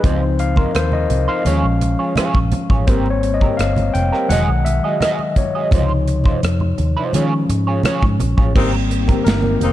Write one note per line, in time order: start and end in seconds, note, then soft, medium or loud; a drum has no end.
0.03 0.65 C#2 medium
0.03 0.51 F3 medium
0.03 0.51 C4 soft
0.03 0.22 D#4 medium
0.03 0.52 D#4 medium
0.03 0.23 F4 medium
0.03 0.23 C5 medium
0.03 0.41 C5 medium
0.03 kick loud
0.03 closed hi-hat medium
0.03 muted conga soft
0.39 0.56 F5 loud
0.39 muted clean electric guitar stroke soft
0.39 closed hi-hat medium
0.56 0.72 D#4 soft
0.56 0.72 F4 medium
0.56 0.74 A#4 medium
0.56 0.72 C5 medium
0.56 kick medium
0.56 high conga medium
0.75 1.06 D#2 medium
0.75 0.94 C5 medium
0.75 cross-stick loud
0.75 closed hi-hat medium
0.92 1.30 D#5 medium
0.92 muted clean electric guitar stroke soft
0.92 high conga medium
1.10 1.26 C2 medium
1.10 closed hi-hat medium
1.10 low conga medium
1.28 1.46 D#4 medium
1.28 1.45 F4 medium
1.28 1.46 C5 medium
1.28 1.96 F5 medium
1.45 1.61 D#2 loud
1.45 2.83 F3 medium
1.45 2.84 G#3 soft
1.45 2.84 C#4 medium
1.45 1.65 F4 medium
1.45 1.65 G#4 medium
1.45 1.65 C#5 medium
1.45 closed hi-hat medium
1.45 high conga medium
1.63 1.94 A#1 medium
1.81 muted clean electric guitar stroke soft
1.81 closed hi-hat medium
1.81 high conga soft
1.99 2.14 F4 soft
1.99 2.14 G#4 soft
1.99 2.14 C#5 medium
2.16 2.37 F4 medium
2.16 2.37 G#4 medium
2.16 2.38 C#5 medium
2.16 muted fingered electric bass stroke soft
2.16 cross-stick loud
2.16 closed hi-hat medium
2.16 high conga medium
2.34 2.50 A#1 medium
2.34 kick medium
2.34 muted conga soft
2.52 muted clean electric guitar stroke soft
2.52 closed hi-hat medium
2.52 high conga medium
2.52 low conga medium
2.70 2.86 A1 medium
2.70 2.85 F4 soft
2.70 2.85 G#4 soft
2.70 2.85 C#5 medium
2.70 kick medium
2.87 3.49 G#1 medium
2.87 3.35 G3 soft
2.87 3.35 A#3 soft
2.87 3.35 C4 medium
2.87 3.07 C4 medium
2.87 3.07 G4 medium
2.87 3.07 A#4 medium
2.87 3.12 C5 medium
2.87 kick loud
2.87 closed hi-hat medium
2.87 muted conga soft
3.06 muted conga soft
3.10 3.33 C#5 medium
3.23 muted clean electric guitar stroke soft
3.23 closed hi-hat medium
3.34 3.57 D#5 medium
3.41 3.57 C4 medium
3.41 3.56 G4 soft
3.41 3.56 A#4 medium
3.41 kick medium
3.41 high conga medium
3.57 3.89 G1 medium
3.57 3.95 F5 medium
3.57 cross-stick medium
3.57 closed hi-hat medium
3.76 muted clean electric guitar stroke soft
3.76 closed hi-hat soft
3.76 muted conga soft
3.76 high conga medium
3.94 4.10 F1 medium
3.94 4.31 G5 loud
3.94 closed hi-hat medium
3.94 low conga medium
4.12 4.31 C4 medium
4.12 4.30 G4 medium
4.12 4.31 A#4 medium
4.12 cross-stick soft
4.28 4.49 E1 loud
4.28 5.32 D#3 medium
4.28 5.32 F#3 medium
4.28 5.32 G#3 medium
4.28 4.49 F#4 medium
4.28 4.49 G#4 medium
4.28 4.50 D#5 medium
4.28 4.63 F#5 loud
4.28 closed hi-hat medium
4.28 muted conga soft
4.28 high conga medium
4.49 4.79 B1 medium
4.65 5.02 E5 medium
4.65 muted clean electric guitar stroke soft
4.65 closed hi-hat medium
4.65 high conga medium
4.84 4.99 F#4 soft
4.84 4.98 G#4 medium
4.84 4.98 D#5 medium
5.00 5.20 F#4 medium
5.00 5.20 G#4 medium
5.00 5.37 D#5 medium
5.00 5.20 D#5 medium
5.00 cross-stick loud
5.00 closed hi-hat medium
5.00 high conga medium
5.19 muted conga soft
5.36 6.04 C#5 medium
5.36 muted clean electric guitar stroke soft
5.36 kick medium
5.36 closed hi-hat medium
5.36 high conga medium
5.36 low conga medium
5.55 5.70 F#4 soft
5.55 5.69 G#4 soft
5.55 5.69 D#5 medium
5.71 6.33 C#2 loud
5.71 6.75 C3 soft
5.71 6.74 F3 soft
5.71 5.91 D#4 medium
5.71 6.75 D#4 medium
5.71 5.91 F4 medium
5.71 5.92 C5 medium
5.71 kick loud
5.71 closed hi-hat medium
5.71 muted conga soft
5.71 low conga medium
5.89 muted conga soft
6.08 muted clean electric guitar stroke soft
6.08 closed hi-hat medium
6.24 6.40 D#4 soft
6.24 6.40 F4 medium
6.24 6.40 C5 medium
6.24 kick medium
6.24 high conga medium
6.43 6.73 F2 medium
6.43 muted clean electric guitar stroke soft
6.43 cross-stick loud
6.43 closed hi-hat medium
6.43 muted conga soft
6.60 muted clean electric guitar stroke soft
6.60 high conga medium
6.78 6.94 D#2 medium
6.78 closed hi-hat medium
6.78 low conga medium
6.97 7.14 D#4 soft
6.97 7.13 F4 medium
6.97 7.15 C5 medium
7.13 7.44 D#3 loud
7.13 7.60 F3 medium
7.13 7.60 G#3 soft
7.13 7.61 C#4 medium
7.13 7.33 F4 medium
7.13 7.33 G#4 medium
7.13 7.33 C#5 medium
7.13 closed hi-hat medium
7.13 muted conga soft
7.13 high conga medium
7.49 7.80 G#2 medium
7.49 muted clean electric guitar stroke soft
7.49 closed hi-hat medium
7.49 high conga medium
7.67 7.82 F4 medium
7.67 7.82 G#4 medium
7.67 7.81 C#5 medium
7.83 8.03 F4 medium
7.83 8.03 G#4 medium
7.83 8.04 C#5 medium
7.83 cross-stick loud
7.83 closed hi-hat medium
7.83 muted conga soft
7.83 high conga medium
8.02 8.18 G#2 medium
8.02 kick medium
8.02 muted conga soft
8.20 8.35 A#1 medium
8.20 muted clean electric guitar stroke soft
8.20 closed hi-hat medium
8.20 high conga medium
8.20 low conga medium
8.37 8.53 A1 medium
8.37 8.53 F4 soft
8.37 8.52 G#4 soft
8.37 8.52 C#5 soft
8.37 kick medium
8.55 9.16 G#1 medium
8.55 9.73 D#3 medium
8.55 9.02 G3 medium
8.55 9.73 A#3 medium
8.55 9.02 A#3 medium
8.55 8.71 A#3 medium
8.55 9.73 C4 medium
8.55 8.74 C4 medium
8.55 8.71 C4 medium
8.55 9.03 C4 medium
8.55 8.71 D#4 medium
8.55 9.73 G4 medium
8.55 8.74 G4 medium
8.55 8.74 A#4 medium
8.55 kick loud
8.55 crash loud
8.73 muted conga soft
8.91 muted clean electric guitar stroke soft
8.91 closed hi-hat medium
9.08 9.24 C4 medium
9.08 9.23 G4 medium
9.08 9.23 A#4 medium
9.08 kick medium
9.08 closed hi-hat medium
9.08 high conga medium
9.25 9.57 G1 medium
9.25 9.73 A#3 medium
9.25 9.73 A#4 medium
9.25 snare loud
9.25 closed hi-hat medium
9.25 muted conga soft
9.42 muted clean electric guitar stroke soft
9.42 high conga medium
9.61 9.73 F1 medium
9.61 9.73 A#3 medium
9.61 9.73 C4 medium
9.61 9.73 D#4 medium
9.61 closed hi-hat medium
9.61 low conga medium